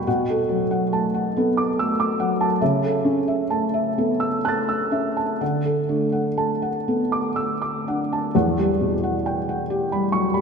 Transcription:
felt piano
0.07 B2 F#5
0.30 A4
0.49 F#3
0.71 F#5
0.92 A3 A5
1.14 F#5
1.37 B3 A4
1.57 D6
1.79 A3 E6
2.00 D6
2.20 F#3 F#5
2.41 A5
2.61 C#3 E5
2.83 A4
3.05 C#4
3.28 E5
3.50 A3 A5
3.74 E5
3.98 B3 A4
4.20 E6
4.44 A3 A5 F#6 A6
4.69 E6
4.91 C#4 E5
5.17 A5
5.41 D3 F#5
5.65 A4
5.89 A3 D4
6.12 F#5
6.37 A3 A5
6.62 F#5
6.88 B3 A4
7.12 D6
7.36 A3 E6
7.62 D6
7.87 D4 F#5
8.13 A5
8.35 E2 F#5
8.58 G3 G4
8.80 B2
9.03 F#5
9.26 G5
9.49 F#5
9.70 G4
9.92 G3 B5
10.12 F#3 C#6
10.34 G3 B5

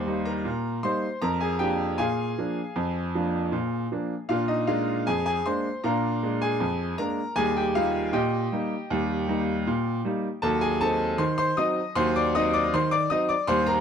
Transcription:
upright piano
Already playing: D#2 G3 C5 C6
0.06 G3 A#3 D#4
0.25 A#4 A#5
0.45 A#2
0.83 G3 A#3 D#4 C5 C6
1.22 F2 A#4 A#5
1.40 G#4 G#5
1.59 F3 A#3 D4 G4 G5
1.98 A#2 G#4 F5 G#5
2.38 F3 A#3 D4
2.76 F2
3.15 F3 A#3 D4
3.52 A#2
3.92 F3 A#3 D4
4.29 A#2 D4 F4 F5
4.48 D#4 D#5
4.67 G#3 A#3 D4 F4 F5
5.07 F2 G#4 G#5
5.26 G#4 G#5
5.46 G#3 A#3 D4 C5 C6
5.84 A#2 D4 A#4 F5 A#5
6.23 G#3 A#3 D4
6.42 G#4 G#5
6.60 F2
6.98 G#3 A#3 D4 A#4 A#5
7.36 D#2 G3 G#4 G#5
7.57 G4 G5
7.75 G3 A#3 D#4 F4 F5
8.13 A#2 G4 D#5 G5
8.52 G3 A#3 D#4
8.90 D#2 G3
9.28 G3 A#3 D#4
9.67 A#2
10.05 G3 A#3 D#4
10.42 D#2 F#3 A4 A5
10.61 G#4 G#5
10.81 F#3 C4 D#4 A4 A5
11.18 D#3 C5 C6
11.38 C5 C6
11.57 F#3 C4 D#4 D#5 D#6
11.95 D#2 F#3 C5 C6
12.16 D5 D6
12.35 F#3 C4 D#4 D#5 D#6
12.53 D5 D6
12.74 D#3 C5 C6
12.91 D5 D6
13.10 F#3 C4 D#4 D#5 D#6
13.29 D5 D6
13.47 D#2 G3 C5 C6
13.66 A#4 A#5

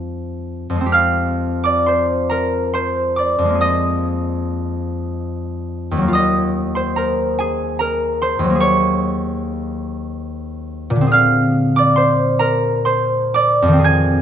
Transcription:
harp
Already playing: F2 G#3 D#4 G4 G#4 C5 D#5 F5 G5
0.70 F2
0.75 G#3
0.81 C4
0.86 G4
0.92 F5 F6
1.64 D5 D6
1.86 C5 C6
2.30 A#4 A#5
2.74 C5 C6
3.16 D5 D6
3.38 F2
3.45 G#3
3.49 A#3
3.55 G#4
3.61 D#5 D#6
5.91 D#2
5.97 F#3
6.02 A#3
6.08 F4
6.13 D#5 D#6
6.75 C5 C6
6.96 A#4 A#5
7.39 G#4 G#5
7.79 A#4 A#5
8.22 C5 C6
8.39 D#2
8.44 F#3
8.50 A#3
8.55 G#4
8.60 C#5 C#6
10.90 A#2
10.96 D3
11.01 C4
11.07 G#4
11.12 F5 F6
11.76 D5 D6
11.96 C5 C6
12.39 A#4 A#5
12.85 C5 C6
13.34 D5 D6
13.62 F2
13.68 D#3
13.73 C4
13.79 G#4
13.84 G#5 G#6

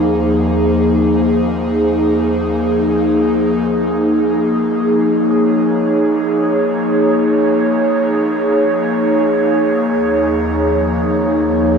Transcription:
analog synth pad
Already playing: D#2 F3 A#3 D#4 G#4 C5
5.06 C#5
9.82 D#2
10.25 F3

